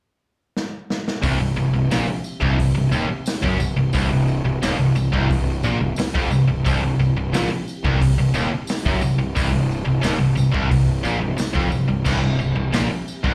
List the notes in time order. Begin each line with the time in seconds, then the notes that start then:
0.57 snare
0.90 snare
1.08 snare
1.22 C1 C2 C4 G4 E5, kick, open hi-hat, tambourine
1.40 C1 C2
1.58 C1 C2, tambourine
1.73 C1 C2
1.91 A#1 A#2, snare, open hi-hat, tambourine
2.07 muted fingered electric bass stroke, muted overdriven electric guitar stroke, muted distorted electric guitar stroke
2.24 tambourine
2.42 C1 C2, kick
2.59 C1 C2, kick, open hi-hat, tambourine
2.76 C1 C2
2.92 D#1 D#2, tambourine
3.09 muted overdriven electric guitar stroke, muted fingered electric bass stroke, muted distorted electric guitar stroke
3.26 snare, open hi-hat, tambourine
3.44 F#1 F#2, kick
3.60 C1 C2, tambourine
3.78 C1 C2
3.93 C1 C2 C4 E4 G4, kick, open hi-hat, tambourine
4.11 C1 C2
4.27 tambourine
4.45 C1 C2
4.62 D#1 D#2, snare, open hi-hat, tambourine
4.79 C1 C2
4.96 C1 C2, tambourine
5.13 C1 C2, kick
5.30 C1 C2, kick, open hi-hat, tambourine
5.63 A#1 A#2, tambourine
5.81 C1 C2
5.96 muted fingered electric bass stroke, muted overdriven electric guitar stroke, muted distorted electric guitar stroke, snare, open hi-hat, tambourine
6.15 F1 F2, kick
6.30 C1 C2, tambourine
6.48 C1 C2
6.65 C1 C2 C4 E4 G4, kick, open hi-hat, tambourine
6.81 C1 C2
6.98 C1 C2, tambourine
7.15 C1 C2
7.32 A#1 A#2, snare, open hi-hat, tambourine
7.49 muted fingered electric bass stroke, muted overdriven electric guitar stroke, muted distorted electric guitar stroke
7.68 tambourine
7.85 C1 C2, kick
8.00 C1 C2, kick, open hi-hat, tambourine
8.17 C1 C2
8.34 D#1 D#2, tambourine
8.51 muted fingered electric bass stroke, muted distorted electric guitar stroke, muted overdriven electric guitar stroke
8.67 snare, open hi-hat, tambourine
8.86 F#1 F#2, kick
9.01 C1 C2, tambourine
9.18 C1 C2
9.36 C1 C2 C4 E4 G4, kick, open hi-hat, tambourine
9.52 C1 C2
9.71 tambourine
9.86 C1 C2
10.03 D#1 D#2, snare, open hi-hat, tambourine
10.20 C1 C2
10.37 C1 C2, tambourine
10.54 C1 C2, kick
10.71 C1 C2, kick, open hi-hat, tambourine
11.05 A#1 A#2, tambourine
11.21 C1 C2
11.38 muted distorted electric guitar stroke, muted fingered electric bass stroke, muted overdriven electric guitar stroke, snare, open hi-hat, tambourine
11.55 F1 F2, kick
11.72 C1 C2, tambourine
11.89 C1 C2
12.05 C1 C2 C4 G4 E5, kick, crash, tambourine
12.22 C1 C2
12.40 C1 C2, tambourine
12.57 C1 C2
12.73 A#1 A#2, snare, open hi-hat, tambourine
12.89 muted overdriven electric guitar stroke, muted distorted electric guitar stroke, muted fingered electric bass stroke
13.08 tambourine
13.24 C1 C2, kick